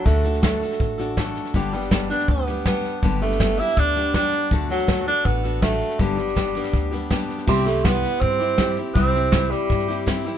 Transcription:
<<
  \new Staff \with { instrumentName = "Upright piano" } { \time 4/4 \key g \major \tempo 4 = 162 r1 | r1 | r1 | r1 |
r1 | <e' g' c'''>1~ | <e' g' c'''>1 | }
  \new Staff \with { instrumentName = "Steel-string acoustic guitar" } { \time 4/4 \key g \major <d a d' fis' a'>8 <d' fis' a'>8 <a d' fis' a'>8 <d' fis' a'>4 <d' fis' a'>8 <a d' fis' a'>4 | <g, d g b d' g'>8 <g b d' g'>8 <g b d' g'>8 <g b d' g'>4 <g b d' g'>8 <g b d' g'>4 | <g, d g b d' g'>8 <g b d' g'>8 <g b d' g'>8 <g b d' g'>4 <g b d' g'>8 <g b d' g'>4 | <d a d' fis' a'>8 <d' fis' a'>8 <a d' fis' a'>8 <d' fis' a'>4 <d' fis' a'>8 <a d' fis' a'>4 |
<g, d g b d' g'>8 <g b d' g'>8 <g b d' g'>8 <g b d' g'>4 <g b d' g'>8 <g b d' g'>4 | <c g c' e' g'>8 <c' e' g'>8 <g e' g'>4. <c' e' g'>8 <g c' e' g'>8 <c' e' g'>8 | <c g c' e' g'>8 <c' e' g'>8 <g c' e' g'>4. <c' e' g'>8 <g c' e' g'>8 <c' e' g'>8 | }
  \new Staff \with { instrumentName = "Tenor saxophone" } { \time 4/4 \key g \major a4 a2 r4 | r8 g4 d'8 b4 b4 | r8 a4 e'8 d'4 d'4 | r8 fis4 d'8 b4 a4 |
g2. r4 | r8 a8 b4 c'4. r8 | c'4. g4. r4 | }
  \new Staff \with { instrumentName = "Upright bass" } { \clef bass \time 4/4 \key g \major d,2 a,,2 | g,,2 d,2 | g,,2 d,2 | d,2 a,,2 |
g,,2 d,2 | c,2 g,2 | c,2 g,2 | }
  \new DrumStaff \with { instrumentName = "Drums" } \drummode { \time 4/4 <bd sn>8 sn16 sn16 <hhp bd sn>8 sn16 sn16 <bd sn>8 sn8 <hhp bd sn>8 sn16 sn16 | <bd sn>8 sn16 sn16 <hhp bd sn>8 sn16 sn16 <bd sn>8 sn8 <hhp bd sn>8 sn8 | <bd sn>8 sn16 sn16 <hhp bd sn>8 sn16 sn16 <bd sn>8 sn8 <hhp bd sn>8 sn8 | <bd sn>8 sn16 sn16 <hhp bd sn>8 sn16 sn16 <bd sn>8 sn8 <hhp bd sn>8 sn16 sn16 |
<bd sn>8 sn16 sn16 <hhp bd sn>8 sn16 sn16 <bd sn>8 sn8 <hhp bd sn>8 sn16 sn16 | <cymc bd sn>8 sn8 <hhp bd sn>8 sn8 <bd sn>16 sn16 sn8 <hhp bd sn>8 sn8 | <bd sn>8 sn8 <hhp bd sn>8 sn8 <bd sn>16 sn16 sn8 <hhp bd sn>8 sn8 | }
>>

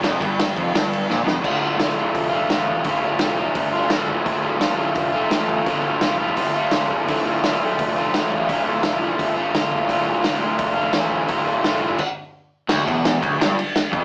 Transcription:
<<
  \new Staff \with { instrumentName = "Overdriven electric guitar" } { \clef bass \time 4/4 \key d \minor \tempo 4 = 170 f,8 g,4 f,8 g,4 bes,8 f,8 | <d, a, d a f'>8 <d a f'>8 <a, d a f'>8 <d a f'>4 <d a f'>8 <d, a, d a f'>4 | <d, a, d a f'>8 <d a f'>8 <a, d a f'>8 <d a f'>4 <d a f'>8 <d, a, d a f'>4 | <d, a, d a f'>8 <d a f'>8 <a, d a f'>8 <d a f'>4 <d a f'>8 <d, a, d a f'>4 |
<d, a, d a f'>8 <d a f'>8 <a, d a f'>8 <d a f'>4 <d a f'>8 <d, a, d a f'>4 | <d, a, d a f'>8 <d a f'>8 <a, d a f'>8 <d a f'>4 <d a f'>8 <d, a, d a f'>4 | <d, a, d a f'>8 <d a f'>8 <a, d a f'>8 <d a f'>4 <d a f'>8 <d, a, d a f'>4 | <d, a, d a f'>8 <d a f'>8 <a, d a f'>8 <d a f'>4 <d a f'>8 <d, a, d a f'>4 |
<d, a, d a f'>8 <d a f'>8 <a, d a f'>8 <d a f'>8 r2 | d,8 e,4 d,8 g,8 r4 f,8 | }
  \new Staff \with { instrumentName = "Picked electric bass" } { \clef bass \time 4/4 \key d \minor f,,8 g,,4 f,,8 g,,4 bes,,8 f,,8 | d,,4 d,,4 f,,4 a,,4 | d,,4 f,,4 g,,4 d,,4 | d,,4 d,,4 f,,4 a,,4 |
d,,4 f,,4 g,,4 d,,4 | d,,4 d,,4 f,,4 a,,4 | d,,4 f,,4 g,,4 d,,4 | d,,4 d,,4 f,,4 a,,4 |
d,,4 f,,4 r2 | d,,8 e,,4 d,,8 g,,8 r4 f,,8 | }
  \new DrumStaff \with { instrumentName = "Drums" } \drummode { \time 4/4 <bd cymr sn>8 <bd cymr>8 <cymr sn>8 <bd cymr>8 <cymr sn>8 cymr8 sn8 sn8 | <cymc bd>4 <hho sn>4 <hho bd>4 <hho sn>8 bd8 | <hho bd>4 <hho sn>4 <hho bd>4 <hho sn>8 bd8 | <hho bd>4 <hho sn>4 <hho bd>4 <hho sn>8 bd8 |
<hho bd>4 <hho sn>8. bd16 <hho bd>4 <hho sn>8 bd8 | <hho bd>4 <hho sn>4 <hho bd>4 <hho sn>8 bd8 | <hho bd>4 <hho sn>4 <hho bd>4 <hho sn>8 bd8 | <hho bd>4 <hho sn>4 <hho bd>4 <hho sn>8 bd8 |
<hho bd>4 <hho sn>8. bd16 <cymc bd>4 r4 | <cymc bd sn>8 <bd cymr>8 <cymr sn>8 <bd cymr>8 <cymr sn>8 cymr8 <cymr sn>8 <bd cymr>8 | }
>>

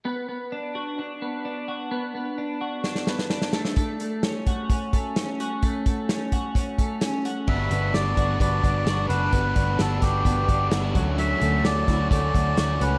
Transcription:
<<
  \new Staff \with { instrumentName = "Melodica" } { \time 4/4 \key b \minor \tempo 4 = 129 r1 | r1 | r1 | r1 |
e''4 d''4 d''4. b'8~ | b'4 a'8 g'4. r4 | e''4 d''4 d''4. b'8 | }
  \new Staff \with { instrumentName = "Clean electric guitar" } { \time 4/4 \key b \minor b8 b8 d'8 fis'8 d'8 b8 d'8 fis'8 | b8 b8 d'8 fis'8 d'8 b8 d'8 a8 | a8 a8 cis'8 fis'8 cis'8 a8 cis'8 fis'8 | a8 a8 cis'8 fis'8 cis'8 a8 cis'8 fis'8 |
b8 b8 d'8 fis'8 b8 d'8 fis'8 d'8 | b8 b8 d'4 b8 d'8 e'16 fis'16 fis8 | fis8 a4 e'16 fis'16 a4 fis'8 cis'8 | }
  \new Staff \with { instrumentName = "Overdriven electric guitar" } { \time 4/4 \key b \minor r1 | r1 | r1 | r1 |
<g b d' fis'>8 <b d' fis'>8 <g b d' fis'>8 <b d' fis'>8 <g b d' fis'>8 <b d' fis'>8 <g b d' fis'>8 <b d' fis'>8 | <g b d' fis'>8 <b d' fis'>8 <g b d' fis'>8 <b d' fis'>8 <g b d' fis'>8 <b d' fis'>8 <g b d' fis'>8 <a cis' fis'>8 | <d fis a cis' fis'>8 <a cis' fis'>8 <d fis a cis' fis'>8 <a cis' fis'>8 <fis a cis' fis'>8 <a cis' fis'>8 <d fis a cis' fis'>8 <a cis' fis'>8 | }
  \new Staff \with { instrumentName = "Picked electric bass" } { \clef bass \time 4/4 \key b \minor r1 | r1 | r1 | r1 |
g,,8 g,,8 g,,8 g,,8 g,,8 g,,8 g,,8 fis,,8 | g,,8 g,,8 g,,8 g,,8 g,,8 g,,8 g,,8 d,8~ | d,8 d,8 d,8 d,8 d,8 d,8 d,8 cis,8 | }
  \new DrumStaff \with { instrumentName = "Drums" } \drummode { \time 4/4 r4 r4 r4 r4 | r4 r4 sn16 sn16 sn16 sn16 sn16 sn16 sn16 sn16 | <hh bd>8 hh8 <hh sn>8 <hh bd>8 <hh bd>8 <hh bd>8 <hh sn>8 hh8 | <hh bd>8 <hh bd>8 <hh sn>8 <hh bd>8 <hh bd>8 <hh bd>8 <hh sn>8 hh8 |
<cymc bd>8 hh8 <hh sn>8 <hh bd>8 <hh bd>8 <hh bd>8 <hh sn>8 hh8 | <hh bd>8 <hh bd>8 <hh sn>8 <hh bd sn>8 <hh bd>8 <hh bd>8 <hh sn>8 <hh bd>8 | hh8 hh8 <hh sn>8 <hh bd sn>8 <hh bd>8 <hh bd>8 <hh sn>8 hh8 | }
>>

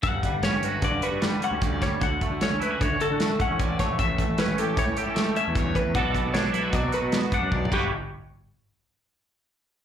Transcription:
<<
  \new Staff \with { instrumentName = "Clean electric guitar" } { \time 5/4 \key g \lydian \tempo 4 = 152 fis''4 cis''8 b'8 d''8 b'4 fis''8 d''8 cis''8 | fis''4 cis''8 b'8 cis''8 a'4 fis''8 d''8 cis''8 | e''4 b'8 a'8 cis''8 a'4 e''8 cis''8 b'8 | fis''4 cis''8 b'8 d''8 b'4 fis''8 d''8 g'8 |
r1 r4 | }
  \new Staff \with { instrumentName = "Clean electric guitar" } { \time 5/4 \key g \lydian << { r4 cis'8 fis'4 fis'4 cis'4. | r4 cis'8 e'16 fis'8. fis'4 cis'4. | r4 cis'8 g'4 g'4 cis'4. | <b d' fis' a'>4 d'8 e'16 fis'8. fis'4 d'4 <g fis' b' cis''>8 |
r1 r4 | } \\ { g,8 g4. d4 g4 g,8 g8 | d8 a4. a,4 a4 d8 a8 | a,8 a4. e4 a4 g,8 a,8 | b,8 b4. fis4 b4 b,8 g,8 |
r1 r4 | } >> }
  \new Staff \with { instrumentName = "Picked electric bass" } { \clef bass \time 5/4 \key g \lydian g,,8. g,,8 g,,8. g,16 g,16 r16 g,8 r8 d,4 d,16 | d,8. d,8 d,8. d16 d16 r16 d8 r8 a,,4 bes,,16 | a,,8. a,,8 a,,8. a,16 a,16 r16 a,8 r8 e,4 e,16 | b,,8. b,,8 b,,8. b,16 b,16 r16 b,8 r8 fis,16 b,,8 g,,8 |
r1 r4 | }
  \new DrumStaff \with { instrumentName = "Drums" } \drummode { \time 5/4 <hh bd>8 <hh bd>8 <hh sn>8 hh8 <hh bd>8 hh8 <hh sn>8 hh8 <hh bd>8 <hh bd sn>8 | <hh bd>8 <hh bd>8 <hh sn>8 hh8 <hh bd>8 hh8 <hh sn>8 <hh bd>8 <hh bd>8 <hh bd sn>8 | <hh bd>8 <hh bd>8 <hh sn>8 hh8 <hh bd>8 hh8 <hh sn>8 hh8 <hh bd>8 <hh bd>8 | <hh bd>8 <hh bd>8 <hh sn>8 hh8 <hh bd>8 hh8 <hh sn>8 <hh bd>8 \tuplet 3/2 { bd16 r16 toml16 <cymc bd>16 r16 r16 } |
r4 r4 r4 r4 r4 | }
>>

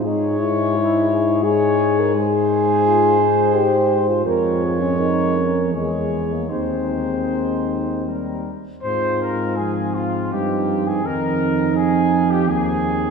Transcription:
<<
  \new Staff \with { instrumentName = "Trumpet section" } { \time 3/4 \key aes \major \tempo 4 = 83 des''2 des''4 | c''2. | des''2 des''4 | c''2 bes'8 r8 |
c''8 bes'8 aes'8 f'8 g'8. aes'16 | bes'4 aes'8. g'16 aes'4 | }
  \new Staff \with { instrumentName = "French horn section" } { \time 3/4 \key aes \major aes'4 fes'8 aes'4.~ | aes'4 f'8 ees'8 c''4 | bes'8 aes'8 bes'4 aes'4 | ees'2~ ees'8 r8 |
f'2 ees'4 | ees'2 ees'4 | }
  \new Staff \with { instrumentName = "Euphonium" } { \time 3/4 \key aes \major ees'8 fes'4. aes'8. bes'16 | aes'2 g'8. f'16~ | f'8. des'16 ees'8 des'8 aes8. bes16 | c'2~ c'8 r8 |
c'4 c'2 | c'4 c'2 | }
  \new Staff \with { instrumentName = "Trombone" } { \clef bass \time 3/4 \key aes \major aes2 aes4 | aes2. | aes2 aes4 | aes2 g8 r8 |
aes4 f2 | ees4 f2 | }
  \new Staff \with { instrumentName = "Tuba" } { \clef bass \time 3/4 \key aes \major aes,2.~ | aes,2. | f,2 fes,4 | ees,2~ ees,8 r8 |
aes,2 g,4 | f,2 ees,4 | }
>>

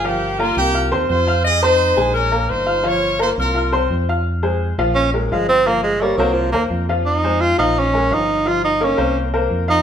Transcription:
<<
  \new Staff \with { instrumentName = "Upright piano" } { \time 4/4 \key f \minor \tempo 4 = 171 <f f' f''>4 <bes bes' bes''>4 <f' f'' f'''>8 <c' c'' c'''>4 <f' f'' f'''>8~ | <f' f'' f'''>8 <c' c'' c'''>4 <aes aes' aes''>4 <bes bes' bes''>4 <f' f'' f'''>8 | <f f' f''>4 <bes bes' bes''>4 <f' f'' f'''>8 <c' c'' c'''>4 <f' f'' f'''>8 | r8 <aes aes' c''>4 <f f' f''>4 <aes aes' bes'>8 <f f' f''>4 |
<f f' f''>4 <bes bes' des''>8 <bes bes' c''>4 <bes bes' c''>4 <f f' f''>8~ | <f f' f''>8 <aes aes' c''>4 <f f' f''>4 <aes aes' bes'>8 <f f' f''>4 | <f f' f''>4 <bes bes' des''>8 <bes bes' c''>4 <bes bes' c''>4 <f f' f''>8 | }
  \new Staff \with { instrumentName = "Horn section" } { \time 4/4 \key f \minor <bes g'>4 <bes f'>8 <bes g'>4 r8 <f' c''>4 | <aes' ees''>8 <ees' c''>4. <des' bes'>4 <ees' c''>4 | <f' des''>4 <f' c''>8 <f' bes'>4 r4. | r1 |
r1 | r1 | r1 | }
  \new Staff \with { instrumentName = "Tenor saxophone" } { \time 4/4 \key f \minor r1 | r1 | r1 | r2 des'8 f8 aes8 c'8 |
bes8 aes8 g8 ges8 f8 bes8 r4 | ees'4 f'8 ees'8 des'4 ees'4 | f'8 ees'8 des'4 r4. ees'8 | }
  \new Staff \with { instrumentName = "Fingered electric bass" } { \clef bass \time 4/4 \key f \minor g,,4. c,4 ees,8 f,4~ | f,4. bes,,4. g,,4~ | g,,4. c,4. f,4~ | f,4. bes,,4. g,,4~ |
g,,4. c,4 ees,8 f,4~ | f,4. bes,,4. g,,4~ | g,,4. c,4. f,4 | }
>>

